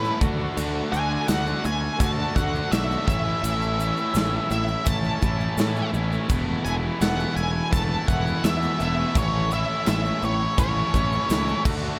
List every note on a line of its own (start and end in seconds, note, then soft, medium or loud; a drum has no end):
0.00 0.18 A2 loud
0.00 0.19 E3 loud
0.00 0.21 A3 loud
0.00 0.19 C#4 loud
0.00 0.19 C#4 medium
0.00 0.23 E4 loud
0.00 0.22 E4 medium
0.00 0.18 B4 medium
0.04 0.20 A3 medium
0.04 shaker soft
0.20 0.45 D2 medium
0.20 0.54 D3 medium
0.20 0.40 A3 loud
0.20 0.38 D4 loud
0.20 0.37 F#4 loud
0.20 kick loud
0.20 shaker medium
0.38 0.56 A3 medium
0.38 0.56 D4 medium
0.38 0.57 F#4 medium
0.56 0.80 D2 medium
0.56 0.90 D3 medium
0.56 0.92 A3 medium
0.56 0.92 D4 medium
0.56 0.93 F#4 medium
0.56 crash medium
0.56 shaker medium
0.91 1.16 D2 medium
0.91 1.26 D3 medium
0.91 1.28 A3 medium
0.91 1.28 D4 medium
0.91 1.29 F#4 medium
0.91 1.26 G#5 loud
0.91 shaker medium
1.11 1.29 A3 medium
1.11 1.29 D4 medium
1.11 1.30 F#4 medium
1.27 1.52 D2 medium
1.27 1.63 D3 loud
1.27 1.48 A3 loud
1.27 1.46 D4 loud
1.27 1.44 F#4 loud
1.27 1.65 F#5 medium
1.27 snare loud
1.27 crash medium
1.27 shaker loud
1.46 1.64 A3 medium
1.46 1.64 D4 medium
1.46 1.64 F#4 medium
1.46 shaker soft
1.64 1.88 D2 medium
1.64 2.18 D3 medium
1.64 1.83 A3 medium
1.64 1.81 D4 medium
1.64 1.80 F#4 medium
1.64 2.01 G#5 loud
1.64 muted overdriven electric guitar stroke soft
1.64 shaker medium
1.81 2.36 A3 medium
1.81 2.36 D4 medium
1.81 2.37 F#4 medium
1.99 2.24 D2 loud
1.99 2.33 D3 medium
1.99 2.20 A3 medium
1.99 2.17 D4 medium
1.99 2.16 F#4 medium
1.99 2.36 A5 loud
1.99 kick loud
1.99 crash medium
1.99 shaker loud
2.17 2.35 A3 medium
2.17 2.36 D4 medium
2.17 2.36 F#4 medium
2.34 2.59 D2 medium
2.34 2.69 D3 medium
2.34 2.71 A3 medium
2.34 2.71 D4 medium
2.34 2.72 F#4 medium
2.34 2.73 F#5 medium
2.34 kick medium
2.34 shaker medium
2.53 2.72 A3 medium
2.53 2.72 D4 medium
2.53 2.73 F#4 medium
2.53 shaker soft
2.70 2.95 B1 medium
2.70 3.05 D3 loud
2.70 2.91 A3 loud
2.70 2.89 D4 loud
2.70 2.87 F#4 loud
2.70 3.05 E5 medium
2.70 snare loud
2.70 crash medium
2.70 shaker loud
2.89 3.08 A3 medium
2.89 3.06 D4 medium
2.89 3.05 F#4 medium
2.89 shaker soft
3.07 3.31 A1 medium
3.07 3.41 A2 medium
3.07 3.43 E3 loud
3.07 3.27 A3 loud
3.07 3.24 C#4 loud
3.07 3.24 E4 loud
3.07 4.50 E5 medium
3.07 kick loud
3.07 shaker medium
3.24 3.43 A3 medium
3.24 3.43 C#4 medium
3.24 3.44 E4 medium
3.42 3.90 A1 medium
3.42 4.12 A2 medium
3.42 3.77 E3 medium
3.42 3.78 A3 medium
3.42 3.79 C#4 medium
3.42 3.80 E4 medium
3.42 crash medium
3.42 shaker loud
3.62 shaker soft
3.78 4.14 E3 medium
3.78 4.15 A3 medium
3.78 4.14 C#4 medium
3.78 4.16 E4 medium
3.78 shaker medium
3.96 4.15 A3 medium
3.96 4.14 C#4 medium
3.96 4.16 E4 medium
3.96 shaker soft
4.14 4.38 A1 medium
4.14 4.68 A2 medium
4.14 4.50 E3 loud
4.14 4.34 A3 medium
4.14 4.32 C#4 loud
4.14 4.31 E4 loud
4.14 snare loud
4.14 crash medium
4.14 shaker loud
4.32 4.51 A3 medium
4.32 4.50 C#4 medium
4.32 4.51 E4 medium
4.50 4.74 A1 medium
4.50 5.21 E3 medium
4.50 4.70 A3 medium
4.50 4.68 C#4 medium
4.50 4.68 E4 medium
4.50 4.88 E5 medium
4.50 muted overdriven electric guitar stroke soft
4.50 shaker medium
4.68 5.22 A3 medium
4.68 5.22 C#4 medium
4.68 5.23 E4 medium
4.68 shaker soft
4.85 5.10 A1 medium
4.85 5.21 E3 medium
4.85 5.05 A3 medium
4.85 5.03 C#4 medium
4.85 5.02 E4 medium
4.85 5.90 A5 medium
4.85 kick loud
4.85 crash medium
4.85 shaker loud
5.03 5.21 A3 medium
5.03 5.22 C#4 medium
5.03 5.23 E4 medium
5.03 shaker soft
5.21 5.46 A1 medium
5.21 5.56 E3 medium
5.21 5.57 A3 medium
5.21 5.57 C#4 medium
5.21 5.58 E4 medium
5.21 kick medium
5.21 shaker medium
5.40 5.58 A3 medium
5.40 5.58 C#4 medium
5.40 5.59 E4 medium
5.40 shaker soft
5.56 6.11 A2 medium
5.56 5.81 A2 loud
5.56 5.91 E3 loud
5.56 5.76 A3 loud
5.56 5.74 C#4 loud
5.56 5.73 E4 loud
5.56 snare loud
5.56 crash medium
5.56 shaker loud
5.74 5.92 A3 medium
5.74 5.92 C#4 medium
5.74 5.94 E4 medium
5.74 shaker soft
5.91 6.17 A1 medium
5.91 6.27 E3 medium
5.91 6.12 A3 medium
5.91 6.10 C#4 medium
5.91 6.10 E4 medium
5.91 shaker medium
6.10 6.28 A3 medium
6.10 6.27 C#4 medium
6.10 6.30 E4 medium
6.10 shaker soft
6.27 6.53 E1 medium
6.27 6.99 E2 medium
6.27 6.99 B2 loud
6.27 6.63 E3 medium
6.27 6.64 A3 medium
6.27 6.65 B3 loud
6.27 6.66 E4 loud
6.27 kick loud
6.27 crash medium
6.27 shaker medium
6.64 6.89 E1 medium
6.64 6.98 E3 medium
6.64 7.00 A3 medium
6.64 7.00 B3 medium
6.64 7.02 E4 medium
6.64 6.74 G#5 loud
6.64 shaker medium
6.82 7.01 E3 medium
6.82 7.01 A3 medium
6.82 7.00 B3 medium
6.82 7.02 E4 medium
6.99 7.24 E1 medium
6.99 7.72 E2 loud
6.99 7.72 B2 loud
6.99 7.35 E3 loud
6.99 7.20 A3 medium
6.99 7.18 B3 loud
6.99 7.16 E4 loud
6.99 7.36 F#5 medium
6.99 snare loud
6.99 crash medium
6.99 shaker medium
7.17 7.35 A3 medium
7.17 7.34 B3 medium
7.17 7.36 E4 medium
7.17 shaker soft
7.35 7.60 E1 medium
7.35 7.56 E3 medium
7.35 7.55 A3 medium
7.35 7.53 B3 medium
7.35 7.53 E4 medium
7.35 7.72 G#5 loud
7.35 muted overdriven electric guitar stroke soft
7.35 shaker medium
7.54 8.08 E3 medium
7.54 8.09 A3 medium
7.54 8.09 B3 medium
7.54 8.10 E4 medium
7.71 7.96 E1 medium
7.71 8.06 E3 medium
7.71 7.91 A3 medium
7.71 7.89 B3 medium
7.71 7.89 E4 medium
7.71 8.08 A5 loud
7.71 kick loud
7.71 crash medium
7.71 shaker medium
7.89 8.08 A3 medium
7.89 8.08 B3 medium
7.89 8.09 E4 medium
8.07 8.32 E1 medium
8.07 8.43 E3 medium
8.07 8.43 A3 medium
8.07 8.43 B3 medium
8.07 8.45 E4 medium
8.07 8.45 F#5 medium
8.07 kick medium
8.07 shaker medium
8.25 8.43 E3 medium
8.25 8.44 A3 medium
8.25 8.43 B3 medium
8.25 8.45 E4 medium
8.25 shaker soft
8.43 9.13 E2 medium
8.43 8.67 E2 loud
8.43 9.13 B2 medium
8.43 8.78 E3 medium
8.43 8.63 A3 loud
8.43 8.61 B3 loud
8.43 8.60 E4 loud
8.43 8.81 E5 medium
8.43 snare loud
8.43 crash medium
8.43 shaker loud
8.61 8.79 A3 medium
8.61 8.79 B3 medium
8.61 8.81 E4 medium
8.61 shaker soft
8.79 9.03 E1 medium
8.79 9.15 E3 medium
8.79 8.99 A3 medium
8.79 8.97 B3 medium
8.79 8.96 E4 medium
8.79 9.18 E5 loud
8.79 shaker medium
8.96 9.14 E3 medium
8.96 9.16 A3 medium
8.96 9.13 B3 medium
8.96 9.17 E4 medium
9.14 9.62 A1 medium
9.14 9.85 A2 medium
9.14 9.50 E3 medium
9.14 9.51 A3 medium
9.14 9.51 C#4 medium
9.14 9.53 E4 loud
9.14 kick loud
9.14 crash medium
9.14 shaker medium
9.19 9.50 C#5 loud
9.50 9.87 E3 medium
9.50 9.87 A3 medium
9.50 9.87 C#4 medium
9.50 9.89 E4 medium
9.50 9.87 E5 medium
9.50 shaker medium
9.67 9.87 A3 medium
9.67 9.86 C#4 medium
9.67 9.88 E4 medium
9.86 10.10 A1 medium
9.86 10.40 A2 loud
9.86 10.22 E3 medium
9.86 10.05 A3 loud
9.86 10.04 C#4 loud
9.86 10.03 E4 loud
9.86 10.24 E5 medium
9.86 snare loud
9.86 crash medium
9.86 shaker medium
10.04 10.22 A3 medium
10.04 10.22 C#4 medium
10.04 10.23 E4 medium
10.04 shaker soft
10.21 10.46 A1 medium
10.21 10.92 E3 medium
10.21 10.40 A3 medium
10.21 10.39 C#4 medium
10.21 10.39 E4 medium
10.21 10.59 C#5 medium
10.21 muted overdriven electric guitar stroke medium
10.21 shaker medium
10.39 10.92 A3 medium
10.39 10.93 C#4 medium
10.39 10.94 E4 medium
10.57 10.81 A1 medium
10.57 10.92 E3 medium
10.57 10.76 A3 medium
10.57 10.75 C#4 medium
10.57 10.74 E4 medium
10.57 11.62 C#5 medium
10.57 kick loud
10.57 crash medium
10.57 shaker medium
10.75 10.92 A3 medium
10.75 10.94 C#4 medium
10.75 10.95 E4 medium
10.93 11.17 A1 medium
10.93 11.30 E3 medium
10.93 11.30 A3 medium
10.93 11.30 C#4 medium
10.93 11.32 E4 medium
10.93 kick medium
10.93 shaker medium
11.11 11.29 A3 medium
11.11 11.29 C#4 medium
11.11 11.31 E4 medium
11.11 shaker soft
11.29 11.53 C#2 medium
11.29 11.63 A2 medium
11.29 11.64 E3 loud
11.29 11.48 A3 loud
11.29 11.47 C#4 loud
11.29 11.46 E4 loud
11.29 snare loud
11.29 crash medium
11.29 shaker medium
11.46 11.64 A3 medium
11.46 11.63 C#4 medium
11.46 11.67 E4 medium
11.46 shaker soft
11.64 11.88 D2 medium
11.64 11.99 D3 medium
11.64 11.84 A3 loud
11.64 11.83 D4 loud
11.64 11.81 F#4 loud
11.64 kick loud
11.64 crash loud
11.64 shaker medium
11.82 11.99 A3 medium
11.82 11.99 D4 medium
11.82 11.99 F#4 medium